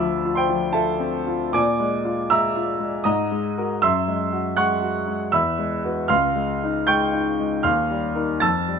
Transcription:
grand piano
Already playing: D2 F4 D5 E5 A5 B5 D6 E6
0.00 F3
0.25 F4
0.35 C5 G5 C6
0.49 F3
0.73 F4 A4 E5 A5
0.99 C4
1.27 F4
1.53 A#2 D5 G#5 D6
1.80 G#3
2.05 F4
2.30 G#3 E5 A#5 E6
2.56 F4
2.79 G#3
3.04 G#2 D#5 A#5 D#6
3.32 G#3
3.58 F#4 A#4
3.82 F#2 E5 C6 E6
4.08 G#3
4.33 F#4
4.57 G#3 F#5 C#6 F#6
4.82 F#4
5.08 G#3
5.32 E2 E5 B5 E6
5.59 G#3
5.84 F#4 B4
6.08 C#2 F5 C6 F6
6.36 G#3
6.64 D#4
6.87 G#3 G5 C#6 G6
7.13 D#4
7.40 G#3
7.63 D#2 F5 C6 F6
7.90 G3
8.15 D#4 A#4
8.40 F2 A5 E6 A6
8.68 G3

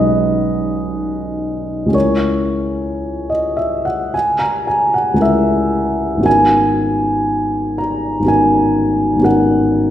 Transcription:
grand piano
Already playing: B1 G#3 C#4 D#4 B4 D#5
1.86 C#2 G#3 C#4
1.91 E4 A#4 C#5
3.30 D#5
3.57 E5
3.85 F#5
4.14 G#5
4.39 A#5
4.67 G#5
4.94 F#5
5.14 C#2 G#3 C#4
5.19 E4 A#4 E5
6.17 G#1 B3 C#4
6.23 F#4 A#4 G#5
7.78 A#5
8.20 G#1 B3 C#4
8.25 F#4 A#4 G#5
9.16 G#1 B3
9.21 C#4 F#4 A#4 F#5

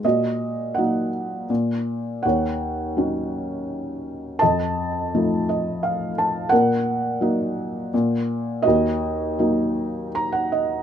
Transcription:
felt piano
0.04 A#2 F#4 D#5
0.75 F#3 D#4 F#5
0.79 A#3
1.50 A#2
2.23 D#2 C#5 F#5
2.97 F#3 C#4 D#4
4.39 F2 D#5 A5
5.15 F3 A3 D#4
5.49 D#5
5.83 F5
6.18 A5
6.49 A#2 A#4 F#5
7.21 F#3 A#3 D#4
7.94 A#2
8.62 F#4 D#5
8.67 D#2
9.39 F#3 A#3 D#4
10.15 A#5
10.32 F#5
10.52 D#5

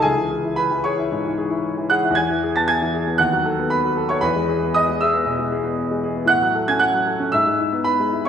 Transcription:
grand piano
0.02 C#2 G#4 G#5
0.17 E3
0.30 G#4
0.44 E4
0.56 B4 B5
0.71 E3
0.84 G#4 C#5 C#6
0.98 E4
1.12 G#2
1.25 E3
1.38 G#4
1.50 E4
1.78 E3
1.90 G#4 F#5 F#6
2.03 E4
2.10 E2
2.15 G#5 G#6
2.30 E3
2.43 G#4
2.56 B3 A5 A6
2.68 G#5 G#6
2.82 E3
2.94 G#4
3.07 B3
3.18 D#2 F#5 F#6
3.32 F#3
3.45 A4
3.59 B3
3.70 B4 B5
3.84 F#3
3.97 A4
4.09 B3 C#5 C#6
4.21 E2 B4 B5
4.36 G#3
4.48 G#4
4.63 B3
4.74 D#5 D#6
4.89 G#3
5.01 G#4 E5 E6
5.13 B3
5.26 B2
5.39 G#3
5.52 G#4
5.64 B3
5.91 G#3
6.04 G#4
6.16 B3
6.25 A2 F#5 F#6
6.42 F#3
6.55 A4
6.68 C#4 G#5 G#6
6.79 F#5 F#6
6.93 F#3
7.07 A4
7.20 C#4
7.32 G#2 E5 E6
7.47 G#3
7.60 E4
7.72 B3
7.84 B4 B5
8.00 G#3
8.12 E4
8.25 C#6

